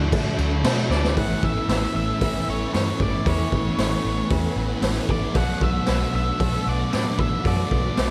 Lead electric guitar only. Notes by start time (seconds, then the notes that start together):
0.91 D5
1.18 F#5
1.44 E5
1.69 E5
1.96 E5
2.50 C#5
2.74 C#5
3.02 D5
3.29 C#5
5.11 D5
5.36 F#5
5.63 E5
5.90 E5
6.16 E5
6.69 D5
6.94 D5
7.20 E5
7.47 D5